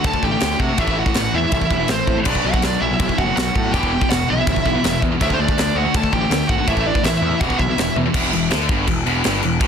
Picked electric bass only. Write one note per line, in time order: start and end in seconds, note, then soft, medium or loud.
0.04 0.16 D2 loud
0.23 0.35 A1 medium
0.42 0.54 D2 medium
0.60 0.71 C3 medium
0.78 1.01 A1 loud
1.15 1.27 A1 loud
1.33 1.45 E2 medium
1.52 1.64 C2 loud
1.71 1.82 E1 medium
1.89 2.00 A1 medium
2.07 2.19 A2 medium
2.26 2.38 B1 loud
2.44 2.56 B1 medium
2.64 2.75 B1 loud
2.81 2.93 B1 medium
3.00 3.12 B1 loud
3.18 3.30 F#1 medium
3.37 3.49 B1 medium
3.56 3.75 A2 loud
3.73 3.96 E1 loud
4.11 4.22 E1 medium
4.30 4.41 B1 medium
4.47 4.58 G1 loud
4.66 4.77 B1 medium
4.84 4.96 E1 medium
5.02 5.14 E2 medium
5.21 5.32 D2 loud
5.39 5.50 D2 medium
5.58 5.69 D2 loud
5.75 5.87 D2 medium
5.95 6.06 D2 loud
6.13 6.24 A1 medium
6.30 6.42 D2 medium
6.49 6.60 G#1 medium
6.68 6.90 A1 loud
7.03 7.15 A1 loud
7.21 7.33 E2 medium
7.41 7.52 E1 loud
7.59 7.70 B1 medium
7.77 7.88 E1 medium
7.96 8.07 E2 medium
8.14 8.31 E1 loud
8.33 8.50 E1 medium
8.51 8.68 D2 loud
8.69 8.86 G1 loud
8.88 9.04 E1 medium
9.05 9.22 E1 loud
9.25 9.41 G1 medium
9.43 9.60 E1 medium
9.60 9.67 A1 loud